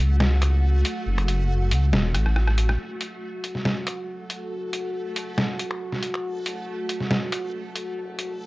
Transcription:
0.00 0.84 C#2 medium
0.00 2.77 A3 medium
0.00 2.78 F#4 medium
0.00 2.81 F#4 medium
0.20 snare loud
0.42 finger snap medium
0.42 closed hi-hat medium
0.85 closed hi-hat medium
1.06 1.73 F#1 loud
1.18 finger snap medium
1.18 closed hi-hat soft
1.28 closed hi-hat medium
1.71 1.94 C#2 medium
1.71 closed hi-hat medium
1.93 2.16 E1 loud
1.93 snare loud
2.14 2.78 A1 loud
2.14 cross-stick medium
2.14 closed hi-hat medium
2.26 cross-stick medium
2.36 cross-stick medium
2.47 cross-stick medium
2.58 closed hi-hat medium
2.69 cross-stick medium
2.79 3.45 F#1 loud
2.79 8.46 A3 medium
2.79 8.46 F#4 medium
2.79 8.46 A4 medium
3.01 closed hi-hat medium
3.44 4.29 C#2 medium
3.44 closed hi-hat medium
3.55 snare soft
3.65 snare loud
3.87 finger snap medium
3.87 closed hi-hat medium
4.30 closed hi-hat medium
4.52 5.18 F#1 loud
4.73 closed hi-hat medium
5.16 6.01 C#2 medium
5.16 closed hi-hat medium
5.38 snare loud
5.59 closed hi-hat medium
5.71 finger snap medium
5.93 snare soft
6.03 closed hi-hat medium
6.14 finger snap medium
6.24 6.91 F#1 loud
6.46 closed hi-hat medium
6.89 7.74 C#2 medium
6.89 closed hi-hat medium
7.00 snare soft
7.11 snare loud
7.32 finger snap medium
7.32 closed hi-hat medium
7.75 closed hi-hat medium
7.97 8.46 F#1 loud
8.19 closed hi-hat medium

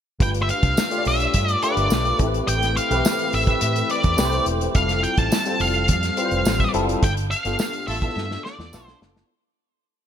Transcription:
0.19 0.50 G1 medium
0.19 0.85 A3 medium
0.19 0.85 D4 medium
0.19 0.85 F4 medium
0.19 0.86 G4 medium
0.19 0.86 B4 medium
0.19 0.28 G5 loud
0.19 kick loud
0.19 closed hi-hat medium
0.34 closed hi-hat medium
0.43 0.49 E5 medium
0.49 1.03 F5 loud
0.49 closed hi-hat medium
0.63 0.73 C2 medium
0.63 kick medium
0.63 closed hi-hat medium
0.77 snare loud
0.77 tambourine medium
0.90 1.56 A3 medium
0.90 1.56 D4 medium
0.90 1.57 F4 medium
0.90 1.57 G4 medium
0.90 0.98 C#5 medium
0.90 closed hi-hat medium
0.98 1.60 D5 medium
1.05 1.26 B1 medium
1.05 1.53 E5 medium
1.05 open hi-hat medium
1.20 closed hi-hat soft
1.34 1.54 G2 medium
1.34 kick medium
1.34 closed hi-hat medium
1.48 closed hi-hat medium
1.53 1.63 D5 medium
1.62 2.15 A3 medium
1.62 2.15 D4 medium
1.62 2.15 F4 medium
1.62 2.15 G4 medium
1.62 1.70 A#4 medium
1.62 2.16 D5 medium
1.62 closed hi-hat medium
1.70 2.19 B4 medium
1.77 1.87 G1 medium
1.77 closed hi-hat soft
1.90 2.11 B1 loud
1.90 snare loud
1.90 tambourine medium
2.05 closed hi-hat soft
2.19 2.39 A1 medium
2.19 2.84 A3 medium
2.19 2.84 C4 medium
2.19 2.84 E4 medium
2.19 2.85 G4 medium
2.19 2.26 A4 medium
2.19 kick medium
2.19 closed hi-hat medium
2.26 2.88 B4 medium
2.34 closed hi-hat soft
2.48 2.77 A1 medium
2.48 2.77 G5 loud
2.48 closed hi-hat medium
2.62 snare soft
2.62 closed hi-hat soft
2.77 3.35 F5 medium
2.77 closed hi-hat medium
2.90 3.01 B1 medium
2.90 3.43 E3 medium
2.90 3.42 A3 medium
2.90 3.42 C4 medium
2.90 3.43 G4 medium
2.90 3.43 B4 medium
2.90 closed hi-hat medium
3.05 snare loud
3.05 tambourine medium
3.19 closed hi-hat soft
3.33 3.53 A1 medium
3.33 3.87 E5 medium
3.33 open hi-hat medium
3.47 4.12 A3 medium
3.47 4.12 C4 medium
3.47 4.12 E4 medium
3.47 4.13 G4 medium
3.47 4.13 B4 medium
3.47 kick medium
3.47 closed hi-hat soft
3.61 3.81 A2 loud
3.61 closed hi-hat loud
3.76 closed hi-hat medium
3.90 4.43 D5 medium
3.90 closed hi-hat medium
4.03 4.14 E2 medium
4.03 kick loud
4.03 closed hi-hat medium
4.17 4.38 C2 medium
4.17 4.70 A3 medium
4.17 4.70 C4 medium
4.17 4.70 E4 medium
4.17 4.70 G4 medium
4.17 4.25 B4 medium
4.17 snare loud
4.17 tambourine medium
4.25 4.74 C5 loud
4.32 closed hi-hat soft
4.46 4.66 E1 medium
4.46 closed hi-hat medium
4.61 closed hi-hat soft
4.74 5.05 F1 medium
4.74 5.40 G3 medium
4.74 5.40 C4 medium
4.74 5.40 E4 medium
4.74 5.40 F4 medium
4.74 5.41 A4 medium
4.74 5.05 F5 medium
4.74 kick loud
4.74 closed hi-hat medium
4.89 snare soft
4.89 closed hi-hat medium
5.03 5.18 G5 medium
5.03 closed hi-hat medium
5.17 5.28 A1 medium
5.17 5.61 A5 loud
5.17 kick medium
5.17 closed hi-hat medium
5.32 snare loud
5.32 tambourine medium
5.45 6.11 G3 medium
5.45 6.11 C4 medium
5.45 6.11 F4 medium
5.45 6.12 A4 medium
5.45 closed hi-hat medium
5.60 5.91 F1 loud
5.60 6.71 F5 medium
5.60 open hi-hat medium
5.75 closed hi-hat medium
5.88 6.09 F2 loud
5.88 kick medium
5.88 closed hi-hat loud
6.03 snare soft
6.03 closed hi-hat medium
6.17 6.69 G3 medium
6.17 6.69 C4 medium
6.17 6.70 F4 medium
6.17 6.24 B4 medium
6.17 closed hi-hat medium
6.25 6.73 C5 medium
6.31 6.41 F1 medium
6.31 closed hi-hat soft
6.45 6.65 A1 loud
6.45 snare loud
6.45 tambourine medium
6.60 kick medium
6.60 closed hi-hat soft
6.73 6.94 F#1 medium
6.73 7.02 G3 medium
6.73 7.02 C4 medium
6.73 7.02 E4 medium
6.73 7.03 F4 medium
6.73 7.03 A4 loud
6.73 closed hi-hat medium
6.89 closed hi-hat soft
7.03 7.32 G1 loud
7.03 7.12 G5 loud
7.03 kick loud
7.03 closed hi-hat medium
7.17 closed hi-hat soft
7.31 7.87 F5 loud
7.31 closed hi-hat medium
7.45 7.55 G1 medium
7.45 7.97 B3 medium
7.45 7.97 D4 medium
7.45 7.97 F4 medium
7.45 7.97 G4 medium
7.45 7.98 A4 medium
7.45 closed hi-hat soft
7.59 snare loud
7.59 tambourine medium
7.73 closed hi-hat soft
7.87 8.08 A1 medium
7.87 7.97 A3 medium
7.87 7.97 F4 medium
7.87 7.97 A4 loud
7.87 8.44 E5 medium
7.87 open hi-hat medium
8.02 8.67 B3 medium
8.02 8.67 D4 medium
8.02 8.67 E4 medium
8.02 8.67 F4 medium
8.02 8.68 A4 medium
8.02 kick medium
8.02 closed hi-hat soft
8.16 8.36 G2 loud
8.16 snare medium
8.31 snare medium
8.45 8.86 D5 medium
8.45 snare medium
8.59 8.74 E2 medium
8.59 snare medium
8.73 8.93 B1 loud
8.73 8.91 A3 medium
8.73 9.25 B3 medium
8.73 9.25 D4 medium
8.73 9.25 E4 medium
8.73 8.91 F4 medium
8.73 9.25 F4 medium
8.73 8.91 A4 medium
8.73 9.25 A4 medium
8.73 snare medium
8.73 tambourine medium
8.86 8.98 C5 medium
8.86 snare medium
9.02 9.21 F#1 medium
9.02 snare medium
9.17 snare medium

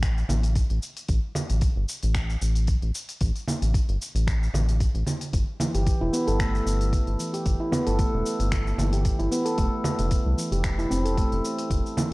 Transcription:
0.00 0.24 A1 loud
0.00 finger snap medium
0.00 kick loud
0.00 open hi-hat medium
0.00 shaker soft
0.18 shaker soft
0.29 0.64 A1 medium
0.29 low conga medium
0.29 shaker medium
0.43 open hi-hat soft
0.43 shaker soft
0.55 kick loud
0.55 open hi-hat soft
0.55 shaker soft
0.70 0.79 A1 medium
0.70 open hi-hat soft
0.83 shaker medium
0.97 open hi-hat soft
0.97 shaker soft
1.08 1.19 A1 loud
1.08 kick loud
1.08 open hi-hat soft
1.08 shaker soft
1.35 low conga medium
1.35 shaker medium
1.50 1.69 A1 medium
1.50 open hi-hat soft
1.50 shaker soft
1.61 kick loud
1.61 open hi-hat medium
1.61 shaker soft
1.76 1.85 G1 loud
1.89 shaker medium
2.03 2.36 A1 loud
2.03 open hi-hat soft
2.03 shaker soft
2.15 finger snap medium
2.15 kick loud
2.15 open hi-hat medium
2.15 shaker soft
2.30 shaker soft
2.42 2.76 A1 medium
2.42 shaker medium
2.56 open hi-hat soft
2.56 shaker soft
2.67 kick medium
2.67 open hi-hat soft
2.67 shaker soft
2.82 2.91 A1 medium
2.82 open hi-hat soft
2.95 shaker medium
3.09 open hi-hat soft
3.09 shaker soft
3.21 3.32 A1 loud
3.21 kick medium
3.21 open hi-hat medium
3.21 shaker soft
3.36 open hi-hat soft
3.36 shaker soft
3.48 low conga medium
3.48 shaker medium
3.62 3.81 A1 medium
3.62 open hi-hat soft
3.62 shaker soft
3.74 kick loud
3.74 open hi-hat medium
3.74 shaker soft
3.89 3.98 G1 loud
3.89 open hi-hat soft
4.02 shaker medium
4.15 4.48 A1 loud
4.15 open hi-hat soft
4.15 shaker soft
4.27 finger snap medium
4.27 kick loud
4.27 open hi-hat soft
4.27 shaker soft
4.43 shaker soft
4.54 4.89 A1 medium
4.54 low conga medium
4.54 shaker medium
4.69 open hi-hat soft
4.69 shaker soft
4.80 kick medium
4.80 open hi-hat soft
4.80 shaker soft
4.95 5.04 A1 medium
4.95 open hi-hat soft
5.07 low conga medium
5.07 shaker medium
5.21 open hi-hat soft
5.21 shaker soft
5.33 5.44 G1 loud
5.33 kick loud
5.33 open hi-hat medium
5.33 shaker soft
5.60 5.73 E3 medium
5.60 low conga medium
5.60 shaker medium
5.75 5.93 G1 medium
5.75 5.86 G4 medium
5.75 open hi-hat soft
5.75 shaker soft
5.87 kick loud
5.87 open hi-hat medium
5.87 shaker soft
6.01 6.10 E1 loud
6.01 6.13 E4 loud
6.13 6.21 B3 loud
6.13 shaker medium
6.27 6.61 G1 loud
6.27 6.38 A4 loud
6.27 open hi-hat soft
6.27 shaker soft
6.39 6.53 A3 medium
6.39 finger snap medium
6.39 kick loud
6.39 open hi-hat soft
6.39 shaker soft
6.55 shaker soft
6.66 7.01 G1 medium
6.66 shaker medium
6.81 open hi-hat soft
6.81 shaker soft
6.93 kick medium
6.93 open hi-hat medium
6.93 shaker soft
7.07 7.16 G1 medium
7.07 open hi-hat soft
7.19 7.32 E3 medium
7.19 shaker medium
7.34 7.45 G4 medium
7.34 open hi-hat soft
7.34 shaker soft
7.46 7.56 G1 medium
7.46 kick loud
7.46 open hi-hat medium
7.46 shaker soft
7.60 7.72 E4 medium
7.72 7.81 B3 loud
7.72 low conga medium
7.72 shaker medium
7.87 8.06 G1 medium
7.87 7.98 A4 loud
7.87 open hi-hat soft
7.87 shaker soft
7.98 8.13 A3 medium
7.98 kick loud
7.98 open hi-hat medium
7.98 shaker soft
8.14 8.22 E1 loud
8.26 shaker medium
8.40 8.73 G1 loud
8.40 open hi-hat soft
8.40 shaker soft
8.52 finger snap medium
8.52 kick loud
8.52 open hi-hat medium
8.52 shaker soft
8.67 shaker soft
8.78 9.13 G1 medium
8.78 8.92 E3 medium
8.78 low conga medium
8.78 shaker medium
8.93 9.04 G4 medium
8.93 open hi-hat soft
8.93 shaker soft
9.05 kick medium
9.05 open hi-hat medium
9.05 shaker soft
9.19 9.28 G1 medium
9.19 9.31 E4 medium
9.19 open hi-hat soft
9.31 9.40 B3 medium
9.31 shaker medium
9.45 9.57 A4 medium
9.45 open hi-hat soft
9.45 shaker soft
9.58 9.69 F1 loud
9.58 9.72 A3 medium
9.58 kick loud
9.58 open hi-hat medium
9.58 shaker soft
9.84 low conga medium
9.84 shaker medium
9.99 10.18 F1 medium
9.99 open hi-hat soft
9.99 shaker soft
10.11 kick loud
10.11 open hi-hat medium
10.11 shaker soft
10.26 10.35 C2 loud
10.37 10.51 E3 medium
10.37 shaker medium
10.52 10.85 F1 loud
10.52 10.64 G4 medium
10.52 open hi-hat soft
10.52 shaker soft
10.64 finger snap medium
10.64 kick loud
10.64 open hi-hat medium
10.64 shaker soft
10.78 10.90 E4 medium
10.78 shaker soft
10.90 11.26 F1 medium
10.90 10.99 C4 loud
10.90 shaker medium
11.05 11.16 A4 medium
11.05 open hi-hat soft
11.05 shaker soft
11.17 11.31 A3 medium
11.17 kick loud
11.17 open hi-hat medium
11.17 shaker soft
11.32 11.41 F1 medium
11.32 open hi-hat soft
11.45 shaker medium
11.58 open hi-hat soft
11.58 shaker soft
11.70 11.81 F1 loud
11.70 kick medium
11.70 open hi-hat medium
11.70 shaker soft
11.86 shaker soft
11.97 12.10 E3 medium
11.97 low conga medium
11.97 shaker medium

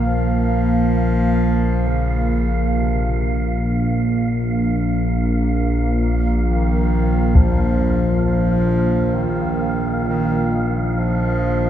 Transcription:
0.00 11.70 A#1 medium
0.00 11.70 A#3 medium
0.00 11.70 F4 medium
0.00 7.87 F5 medium
0.00 11.70 F5 medium
0.07 1.89 F3 loud
1.88 2.79 C#3 medium
2.77 3.46 C3 medium
6.43 7.36 D#3 medium
7.35 8.25 F3 medium
7.35 taiko medium
7.62 11.70 D#5 medium
8.25 9.16 F3 medium
9.15 10.06 D#3 medium
10.08 10.67 D#3 medium
10.97 11.70 F3 loud

